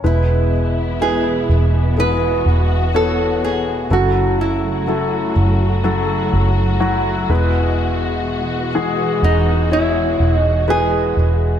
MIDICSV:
0, 0, Header, 1, 5, 480
1, 0, Start_track
1, 0, Key_signature, 4, "major"
1, 0, Tempo, 967742
1, 20, Time_signature, 4, 2, 24, 8
1, 5751, End_track
2, 0, Start_track
2, 0, Title_t, "Nylon-string guitar"
2, 0, Program_c, 0, 24
2, 31, Note_on_c, 0, 64, 55
2, 486, Note_off_c, 0, 64, 0
2, 505, Note_on_c, 0, 68, 62
2, 962, Note_off_c, 0, 68, 0
2, 991, Note_on_c, 0, 71, 77
2, 1466, Note_off_c, 0, 71, 0
2, 1468, Note_on_c, 0, 69, 66
2, 1687, Note_off_c, 0, 69, 0
2, 1709, Note_on_c, 0, 68, 66
2, 1928, Note_off_c, 0, 68, 0
2, 1949, Note_on_c, 0, 66, 60
2, 2168, Note_off_c, 0, 66, 0
2, 2188, Note_on_c, 0, 64, 58
2, 3604, Note_off_c, 0, 64, 0
2, 4584, Note_on_c, 0, 63, 60
2, 4825, Note_off_c, 0, 63, 0
2, 4827, Note_on_c, 0, 64, 66
2, 5134, Note_off_c, 0, 64, 0
2, 5134, Note_on_c, 0, 63, 66
2, 5284, Note_off_c, 0, 63, 0
2, 5308, Note_on_c, 0, 68, 74
2, 5751, Note_off_c, 0, 68, 0
2, 5751, End_track
3, 0, Start_track
3, 0, Title_t, "Grand piano"
3, 0, Program_c, 1, 0
3, 0, Control_c, 1, 64, 127
3, 19, Note_on_c, 1, 56, 53
3, 20, Note_on_c, 1, 64, 49
3, 22, Note_on_c, 1, 71, 60
3, 23, Note_on_c, 1, 47, 47
3, 27, Control_c, 1, 64, 0
3, 101, Control_c, 1, 64, 127
3, 475, Note_off_c, 1, 56, 0
3, 476, Note_off_c, 1, 64, 0
3, 477, Note_off_c, 1, 71, 0
3, 502, Note_on_c, 1, 56, 51
3, 506, Note_on_c, 1, 64, 45
3, 507, Note_on_c, 1, 71, 52
3, 722, Note_off_c, 1, 47, 0
3, 957, Note_off_c, 1, 56, 0
3, 959, Note_off_c, 1, 64, 0
3, 959, Note_off_c, 1, 71, 0
3, 980, Note_on_c, 1, 56, 48
3, 984, Note_on_c, 1, 64, 39
3, 984, Note_on_c, 1, 68, 47
3, 1436, Note_off_c, 1, 56, 0
3, 1438, Note_off_c, 1, 64, 0
3, 1438, Note_off_c, 1, 68, 0
3, 1460, Note_on_c, 1, 59, 57
3, 1461, Note_on_c, 1, 73, 56
3, 1462, Note_on_c, 1, 64, 45
3, 1916, Note_off_c, 1, 59, 0
3, 1917, Note_off_c, 1, 64, 0
3, 1917, Note_off_c, 1, 73, 0
3, 1937, Note_on_c, 1, 54, 49
3, 1938, Note_on_c, 1, 64, 52
3, 1939, Note_on_c, 1, 49, 42
3, 1940, Note_on_c, 1, 69, 58
3, 1946, Control_c, 1, 64, 0
3, 2019, Control_c, 1, 64, 127
3, 2395, Note_off_c, 1, 54, 0
3, 2395, Note_off_c, 1, 64, 0
3, 2396, Note_off_c, 1, 69, 0
3, 2417, Note_on_c, 1, 54, 47
3, 2420, Note_on_c, 1, 64, 48
3, 2421, Note_on_c, 1, 69, 61
3, 2640, Note_off_c, 1, 49, 0
3, 2875, Note_off_c, 1, 54, 0
3, 2876, Note_off_c, 1, 64, 0
3, 2876, Note_off_c, 1, 69, 0
3, 2896, Note_on_c, 1, 54, 57
3, 2897, Note_on_c, 1, 64, 49
3, 2898, Note_on_c, 1, 69, 59
3, 3354, Note_off_c, 1, 54, 0
3, 3355, Note_off_c, 1, 64, 0
3, 3355, Note_off_c, 1, 69, 0
3, 3372, Note_on_c, 1, 54, 62
3, 3373, Note_on_c, 1, 64, 62
3, 3375, Note_on_c, 1, 66, 69
3, 3613, Note_off_c, 1, 64, 0
3, 3616, Note_off_c, 1, 54, 0
3, 3618, Note_off_c, 1, 66, 0
3, 3619, Note_on_c, 1, 56, 64
3, 3620, Note_on_c, 1, 47, 53
3, 3621, Note_on_c, 1, 64, 58
3, 3623, Note_on_c, 1, 71, 68
3, 3627, Control_c, 1, 64, 0
3, 3708, Control_c, 1, 64, 127
3, 4304, Note_off_c, 1, 56, 0
3, 4304, Note_off_c, 1, 64, 0
3, 4305, Note_off_c, 1, 71, 0
3, 4320, Note_off_c, 1, 47, 0
3, 4339, Note_on_c, 1, 56, 60
3, 4340, Note_on_c, 1, 52, 60
3, 4340, Note_on_c, 1, 68, 70
3, 4795, Note_off_c, 1, 56, 0
3, 4796, Note_off_c, 1, 52, 0
3, 4796, Note_off_c, 1, 68, 0
3, 4816, Note_on_c, 1, 56, 47
3, 4817, Note_on_c, 1, 64, 41
3, 4819, Note_on_c, 1, 73, 53
3, 5274, Note_off_c, 1, 56, 0
3, 5275, Note_off_c, 1, 64, 0
3, 5276, Note_off_c, 1, 73, 0
3, 5297, Note_on_c, 1, 56, 58
3, 5299, Note_on_c, 1, 64, 48
3, 5299, Note_on_c, 1, 71, 60
3, 5751, Note_off_c, 1, 56, 0
3, 5751, Note_off_c, 1, 64, 0
3, 5751, Note_off_c, 1, 71, 0
3, 5751, End_track
4, 0, Start_track
4, 0, Title_t, "String section"
4, 0, Program_c, 2, 48
4, 18, Note_on_c, 2, 59, 46
4, 19, Note_on_c, 2, 47, 51
4, 22, Note_on_c, 2, 52, 50
4, 23, Note_on_c, 2, 64, 56
4, 972, Note_off_c, 2, 64, 0
4, 980, Note_on_c, 2, 66, 64
4, 1920, Note_off_c, 2, 59, 0
4, 1921, Note_off_c, 2, 47, 0
4, 1922, Note_off_c, 2, 52, 0
4, 1930, Note_off_c, 2, 66, 0
4, 1937, Note_on_c, 2, 49, 50
4, 1938, Note_on_c, 2, 54, 50
4, 1939, Note_on_c, 2, 66, 62
4, 1942, Note_on_c, 2, 57, 54
4, 3602, Note_off_c, 2, 49, 0
4, 3602, Note_off_c, 2, 54, 0
4, 3604, Note_off_c, 2, 57, 0
4, 3618, Note_on_c, 2, 47, 53
4, 3619, Note_on_c, 2, 56, 52
4, 3620, Note_on_c, 2, 52, 52
4, 5751, Note_off_c, 2, 47, 0
4, 5751, Note_off_c, 2, 52, 0
4, 5751, Note_off_c, 2, 56, 0
4, 5751, Note_off_c, 2, 66, 0
4, 5751, End_track
5, 0, Start_track
5, 0, Title_t, "Fingered electric bass"
5, 0, Program_c, 3, 33
5, 20, Note_on_c, 3, 28, 79
5, 720, Note_off_c, 3, 28, 0
5, 741, Note_on_c, 3, 28, 64
5, 1201, Note_off_c, 3, 28, 0
5, 1219, Note_on_c, 3, 28, 66
5, 1920, Note_off_c, 3, 28, 0
5, 1938, Note_on_c, 3, 30, 76
5, 2639, Note_off_c, 3, 30, 0
5, 2659, Note_on_c, 3, 30, 67
5, 3120, Note_off_c, 3, 30, 0
5, 3141, Note_on_c, 3, 30, 77
5, 3601, Note_off_c, 3, 30, 0
5, 3618, Note_on_c, 3, 28, 62
5, 4559, Note_off_c, 3, 28, 0
5, 4577, Note_on_c, 3, 28, 70
5, 5039, Note_off_c, 3, 28, 0
5, 5058, Note_on_c, 3, 28, 66
5, 5519, Note_off_c, 3, 28, 0
5, 5539, Note_on_c, 3, 28, 60
5, 5751, Note_off_c, 3, 28, 0
5, 5751, End_track
0, 0, End_of_file